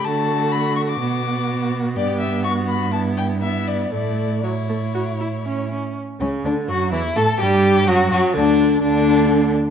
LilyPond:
<<
  \new Staff \with { instrumentName = "Violin" } { \time 4/4 \key d \major \tempo 4 = 125 a''4 b''8 cis'''16 d'''4.~ d'''16 r8 | d''8 e''8 cis'''8 b''8 a''8 g''8 e''8 d''8 | d''4 cis''2~ cis''8 r8 | r8 cis'8 d'8 fis'8 e'8 a'8 g'4 |
fis'8 fis'8 d'4 d'4. r8 | }
  \new Staff \with { instrumentName = "Violin" } { \time 4/4 \key d \major fis'2 fis'2 | g'4 fis'4 e'4 e'4 | e'4 e'2~ e'8 r8 | r8 cis'8 d'8 fis'8 e'8 a'8 g'4 |
fis'8 fis'8 d'4 d'4. r8 | }
  \new Staff \with { instrumentName = "Viola" } { \time 4/4 \key d \major a2 b2 | b2 b4 b4 | a4 fis8 a8 fis'8 e'8 cis'8 cis'8 | r8 cis8 d8 fis8 e8 a8 g4 |
fis8 fis8 d4 d4. r8 | }
  \new Staff \with { instrumentName = "Cello" } { \clef bass \time 4/4 \key d \major d2 b,2 | g,1 | a,2.~ a,8 r8 | r8 cis,8 d,8 fis,8 e,8 a,8 g,4 |
fis,8 fis,8 d,4 d,4. r8 | }
>>